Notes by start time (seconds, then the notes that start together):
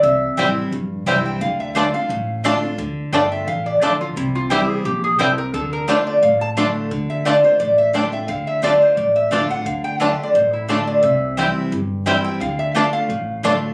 0.03 C2 C3 E5
0.37 A1 E3 G3 C4 E4 C5 G5
0.72 A#1 G2
1.06 C2 E3 G3 C4 E4 C5 G5
1.26 G5
1.41 D2 D3 F5
1.60 E5
1.75 D3 A3 D4 F4 D5 F5 A5
1.94 D4 F4 F5
2.09 A1 A2
2.44 D3 A3 D4 F4 D5 A5
2.63 D4 F4
2.78 D2 D3
3.12 G1 D3 A3 D4 F4 D5 G5 A5
3.32 E5
3.47 A1 E3 F5
3.66 D5
3.81 A#1 D3 A3 D4 F4 A4 D5 A5
4.01 F4
4.16 C2 C3 E4
4.35 F4
4.50 E3 G3 C4 E4 G4 C5 G5
4.69 G#4
4.85 A#1 A#2 G4
5.04 G#4
5.19 C2 C3 G3 C4 E4 A4 C5 G5
5.38 A#4
5.54 D2 D3 A4
5.73 A#4
5.88 D3 A3 D4 F4 C5 D5 A5
6.07 D5
6.22 A1 A2 F5
6.41 A5
6.57 D3 A3 D4 F4 D5 A5
6.91 D2 D3
7.10 E5
7.25 D3 A3 D4 F4 D5 A5
7.44 D4 F4 C5
7.60 A1 A2 D5
7.78 E5
7.93 D3 A3 D4 F4 D5 G5 A5
8.12 D4 F4 E5
8.28 D2 D3 F5
8.47 E5
8.62 D3 A3 D4 F4 D5 A5
8.82 C5
8.97 A1 A2 D5
9.16 E5
9.31 D3 A3 D4 F4 D5 F5 A5
9.49 D4 F4 F#5
9.65 D2 D3 F5
9.84 G5
10.00 D3 A3 D4 F4 D5 F5 A5
10.12 E5
10.23 D5
10.34 A1 A2 C5
10.53 E4
10.68 D3 A3 D4 F4 A4 D5 A5
10.87 D5
11.03 C2 C3 E5
11.37 E3 G3 C4 E4 C5 G5
11.72 G1 G2
12.06 E3 G3 C4 E4 C5 G5
12.24 G5
12.40 D2 D3 F5
12.59 E5
12.75 D3 A3 D4 F4 D5 F5 A5
12.93 F5
13.09 A1 A2
13.43 D3 A3 D4 F4 D5 A5